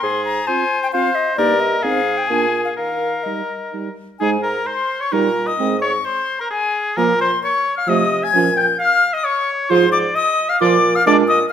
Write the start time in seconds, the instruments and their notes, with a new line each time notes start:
Already playing: flute C6
0.03 bassoon G#2, oboe G#4
0.25 flute A#5
0.47 french horn C4, clarinet F4, oboe C5, flute G#5
0.83 flute G5
0.93 french horn C4, clarinet F4, oboe C5, flute F5
1.15 flute D#5
1.37 bassoon G2, french horn A#3, clarinet D#4, oboe A#4, flute D5
1.60 flute D#5
1.83 bassoon G#2, french horn C4, clarinet D#4, oboe G#4, flute F5
2.18 flute G5
2.28 bassoon A#2, french horn A#3, clarinet D4, flute G#5
2.65 flute F5
2.76 bassoon D#3, oboe A#4, flute F5
3.23 french horn G3, clarinet D#4, flute D#5
3.73 french horn G3, clarinet D#4
4.19 bassoon G#2, french horn G#3, clarinet D#4, oboe G#4, flute G#5
4.43 oboe A#4, flute A#5
4.66 oboe C5, flute C6
5.00 oboe C#5, flute C#6
5.12 bassoon A#2, french horn G3, clarinet D#4, oboe A#4, flute A#5
5.47 oboe D#5, flute D#6
5.59 bassoon G#2, french horn G#3, clarinet C4
5.81 oboe C#5, flute C#6
6.05 oboe C5, flute C6
6.39 oboe A#4, flute A#5
6.50 oboe G#4, flute G#5
6.97 bassoon A#2, french horn F3, clarinet A#3, oboe A#4, flute A#5
7.20 oboe C5, flute C6
7.43 oboe C#5, flute C#6
7.76 oboe F5, flute F6
7.87 bassoon C3, french horn F3, clarinet A3, oboe D#5, flute D#6
8.23 oboe G#5, flute G#6
8.34 bassoon A#2, french horn F3, clarinet C#4
8.56 oboe G5, flute G6
8.79 oboe F5, flute F6
9.13 oboe D#5, flute D#6
9.24 oboe C#5, flute C#6
9.70 bassoon G#2, french horn F3, clarinet F4, oboe C5, flute C6
9.92 oboe D5, flute D6
10.15 oboe D#5, flute D#6
10.49 oboe F5, flute F6
10.60 bassoon A#2, french horn F3, clarinet F4, oboe D5, flute D6
10.95 oboe F5, flute F6
11.06 bassoon A#2, french horn G#3, clarinet D4, oboe D5, flute D6
11.28 oboe D#5, flute D#6
11.49 flute F6